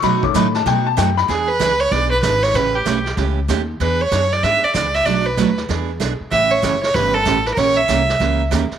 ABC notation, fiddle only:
X:1
M:4/4
L:1/16
Q:"Swing" 1/4=191
K:A
V:1 name="Fiddle"
z16 | G2 B4 c2 d2 B2 B2 c2 | B2 =G4 z8 z2 | B2 c4 d2 e2 d2 d2 e2 |
d2 B4 z8 z2 | e2 c4 c2 B2 A4 B3/2 ^A/2 | c2 e8 z6 |]